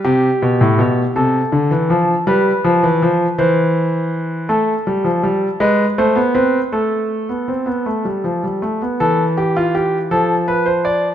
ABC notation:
X:1
M:6/8
L:1/16
Q:3/8=54
K:C
V:1 name="Grand piano"
G6 A6 | B6 c6 | [K:Am] A6 B2 c2 B2 | A8- A2 z2 |
A2 G F G2 A2 B c d2 |]
V:2 name="Grand piano" clef=bass
C,2 B,, A,, B,,2 C,2 D, E, F,2 | G,2 F, E, F,2 E,6 | [K:Am] A,2 G, F, G,2 ^G,2 A, B, C2 | A,3 B, C B, A, G, F, G, A, B, |
E,6 F,6 |]